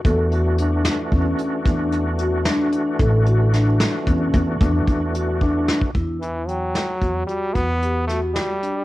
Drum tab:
HH |x-x-x-x-x-x-x-x-x-x-x-|x-x-x-x-x-x-x-x-x-----|x-x-x-x-x-x-x-x-x-x-x-|
SD |------o-----------o---|----o-o-------------o-|------o-----o---o-o---|
BD |o-------o---o---------|o-------o-o-o-o---o--o|o-------o---o---------|